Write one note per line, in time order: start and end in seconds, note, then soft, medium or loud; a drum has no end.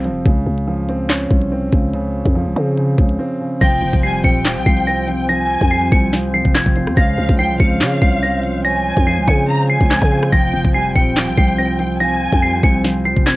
0.00 0.12 C2 loud
0.00 0.05 F3 medium
0.00 0.28 G3 medium
0.00 0.27 C4 medium
0.04 0.26 F3 medium
0.04 closed hi-hat medium
0.10 0.25 F1 loud
0.26 0.46 C#2 loud
0.26 1.30 C#3 loud
0.26 kick loud
0.26 closed hi-hat medium
0.46 1.27 C#2 loud
0.58 closed hi-hat medium
0.67 1.72 F3 medium
0.89 1.50 C4 medium
0.89 closed hi-hat medium
1.09 2.14 C#4 medium
1.09 snare loud
1.09 clap loud
1.09 closed hi-hat medium
1.31 1.71 C2 loud
1.31 kick loud
1.31 closed hi-hat medium
1.41 closed hi-hat medium
1.52 2.55 C4 medium
1.72 2.23 C#2 loud
1.72 1.92 C#3 medium
1.72 kick loud
1.72 closed hi-hat medium
1.93 2.76 C#3 medium
1.93 closed hi-hat medium
2.25 2.48 F2 loud
2.25 kick medium
2.25 closed hi-hat medium
2.35 3.40 F3 medium
2.46 2.56 C2 loud
2.56 2.97 C#3 loud
2.56 3.17 C4 medium
2.56 closed hi-hat medium
2.77 2.97 C#3 medium
2.77 closed hi-hat medium
2.98 3.18 C#2 loud
2.98 3.39 C#3 medium
2.98 kick medium
3.09 closed hi-hat medium
3.19 3.61 C4 medium
3.41 3.61 C#3 medium
3.61 3.81 F1 loud
3.61 6.94 F3 medium
3.61 4.44 F3 medium
3.61 6.94 C4 medium
3.61 6.94 F4 medium
3.61 6.94 C5 medium
3.61 4.01 G5 loud
3.61 4.01 A#6 loud
3.61 kick loud
3.61 closed hi-hat medium
3.61 crash loud
3.82 3.93 F1 loud
3.93 4.23 F1 loud
3.93 kick medium
3.93 closed hi-hat medium
4.03 5.08 G3 medium
4.03 4.23 G#5 medium
4.03 4.20 C7 medium
4.24 4.58 D#1 loud
4.24 4.86 C4 medium
4.24 5.25 G5 medium
4.24 4.41 C#7 medium
4.24 kick loud
4.24 closed hi-hat medium
4.45 4.65 F3 medium
4.45 snare loud
4.45 clap loud
4.45 closed hi-hat soft
4.51 closed hi-hat medium
4.56 4.66 C2 loud
4.56 closed hi-hat medium
4.61 closed hi-hat medium
4.66 5.57 C2 loud
4.66 5.06 F3 medium
4.66 4.83 C7 medium
4.66 kick medium
4.66 closed hi-hat medium
4.77 closed hi-hat medium
4.87 5.91 C4 loud
4.87 5.04 A#6 medium
5.08 5.28 F3 medium
5.08 closed hi-hat medium
5.29 6.12 F3 medium
5.29 6.09 G#5 loud
5.29 5.69 A#6 loud
5.29 closed hi-hat medium
5.61 5.91 F2 loud
5.61 kick medium
5.61 closed hi-hat medium
5.71 6.76 G3 medium
5.71 5.88 C7 medium
5.92 6.43 C2 loud
5.92 6.54 C4 medium
5.92 6.09 C#7 medium
5.92 kick loud
5.92 closed hi-hat medium
6.13 6.32 F3 medium
6.13 snare medium
6.13 closed hi-hat medium
6.34 6.75 F3 medium
6.34 6.51 C7 medium
6.45 6.65 F1 loud
6.45 kick medium
6.45 closed hi-hat medium
6.55 6.97 C4 loud
6.55 6.94 G#6 medium
6.55 snare loud
6.55 clap medium
6.55 closed hi-hat medium
6.66 6.89 F1 loud
6.66 kick loud
6.76 6.97 F3 medium
6.76 closed hi-hat medium
6.87 6.96 F2 loud
6.87 cross-stick medium
6.97 7.17 C#2 loud
6.97 8.02 C#3 loud
6.97 10.29 F3 medium
6.97 10.29 G#3 medium
6.97 10.29 F4 medium
6.97 10.29 C5 medium
6.97 7.36 F5 loud
6.97 7.36 A#6 loud
6.97 kick loud
6.97 closed hi-hat medium
7.18 7.29 C#2 loud
7.29 7.51 C#2 loud
7.29 kick medium
7.29 closed hi-hat medium
7.39 8.44 F3 medium
7.39 7.59 G5 medium
7.39 7.56 C7 medium
7.50 7.59 C2 loud
7.60 7.82 C#2 loud
7.60 8.21 C4 medium
7.60 8.61 F5 medium
7.60 7.76 C#7 medium
7.60 kick loud
7.60 closed hi-hat medium
7.81 8.01 C#3 loud
7.81 8.63 C#4 medium
7.81 snare loud
7.81 clap loud
7.81 closed hi-hat soft
7.86 closed hi-hat medium
7.92 closed hi-hat medium
7.97 closed hi-hat medium
8.02 8.93 C2 loud
8.02 8.18 C7 medium
8.02 kick loud
8.02 closed hi-hat medium
8.13 closed hi-hat medium
8.23 9.26 C4 medium
8.23 8.39 A#6 medium
8.44 closed hi-hat medium
8.65 9.70 C#4 loud
8.65 9.45 G#5 loud
8.65 9.04 A#6 loud
8.65 closed hi-hat medium
8.97 9.19 F2 loud
8.97 kick medium
8.97 closed hi-hat medium
9.07 10.12 F3 medium
9.07 9.23 C7 medium
9.18 9.27 C2 loud
9.27 9.79 C#3 loud
9.27 9.89 C4 medium
9.27 9.44 C#7 medium
9.27 kick loud
9.27 closed hi-hat medium
9.49 9.68 C#3 medium
9.49 9.69 A#5 medium
9.49 closed hi-hat soft
9.56 closed hi-hat medium
9.63 closed hi-hat medium
9.70 10.10 C#3 medium
9.70 10.29 G#5 medium
9.70 9.86 C7 medium
9.81 10.01 C#2 loud
9.81 kick medium
9.81 closed hi-hat medium
9.90 10.32 C4 loud
9.90 10.30 G#6 medium
9.90 snare loud
9.90 clap medium
9.90 closed hi-hat medium
10.02 10.31 C#3 loud
10.02 kick loud
10.02 cross-stick medium
10.11 10.33 C#3 medium
10.11 open hi-hat medium
10.23 cross-stick loud
10.32 10.53 F1 loud
10.32 11.15 F3 loud
10.32 13.36 F3 medium
10.32 13.36 C4 medium
10.32 13.36 F4 medium
10.32 13.36 C5 medium
10.32 10.72 G5 loud
10.32 10.72 A#6 loud
10.32 kick loud
10.32 closed hi-hat medium
10.54 10.64 F1 loud
10.65 10.94 F1 loud
10.65 kick medium
10.65 closed hi-hat medium
10.74 11.79 G3 medium
10.74 10.94 G#5 medium
10.74 10.91 C7 medium
10.95 11.29 D#1 loud
10.95 11.57 C4 medium
10.95 11.96 G5 medium
10.95 11.12 C#7 medium
10.95 kick loud
10.95 closed hi-hat medium
11.16 11.36 F3 medium
11.16 snare loud
11.16 clap loud
11.16 closed hi-hat soft
11.22 closed hi-hat medium
11.28 11.37 C2 loud
11.28 closed hi-hat medium
11.33 closed hi-hat medium
11.37 12.29 C2 loud
11.37 11.78 F3 medium
11.37 11.54 C7 medium
11.37 kick loud
11.37 closed hi-hat medium
11.48 closed hi-hat medium
11.58 12.62 C4 loud
11.58 11.75 A#6 medium
11.79 11.99 F3 medium
11.79 closed hi-hat medium
12.00 12.83 F3 medium
12.00 12.80 G#5 loud
12.00 12.40 A#6 loud
12.00 closed hi-hat medium
12.32 12.62 F2 loud
12.32 kick medium
12.32 closed hi-hat medium
12.42 13.36 G3 medium
12.42 12.59 C7 medium
12.63 13.14 C2 loud
12.63 13.25 C4 medium
12.63 12.80 C#7 medium
12.63 kick loud
12.63 closed hi-hat medium
12.84 13.04 F3 medium
12.84 snare medium
12.84 closed hi-hat medium
13.05 13.36 F3 medium
13.05 13.22 C7 medium
13.16 13.36 F1 loud
13.16 kick medium
13.16 closed hi-hat medium
13.26 13.36 C4 medium
13.26 13.36 G#6 medium
13.26 snare loud
13.26 clap medium
13.26 closed hi-hat medium